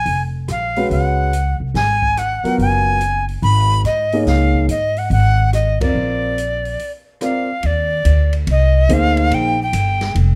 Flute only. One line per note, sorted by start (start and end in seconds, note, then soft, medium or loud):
0.00 0.22 G#5 medium
0.51 0.89 F5 medium
0.92 1.57 F#5 medium
1.76 2.20 G#5 medium
2.18 2.59 F#5 medium
2.61 3.25 G#5 medium
3.43 3.82 B5 medium
3.85 4.24 D#5 medium
4.27 4.66 F5 medium
4.70 5.00 D#5 medium
4.98 5.12 F#5 medium
5.12 5.51 F#5 medium
5.54 5.79 D#5 medium
5.82 6.92 D5 medium
7.23 7.67 F5 medium
7.66 8.34 D5 medium
8.51 8.95 D#5 medium
8.93 9.36 F5 medium
9.34 9.60 G5 medium
9.62 10.13 G5 medium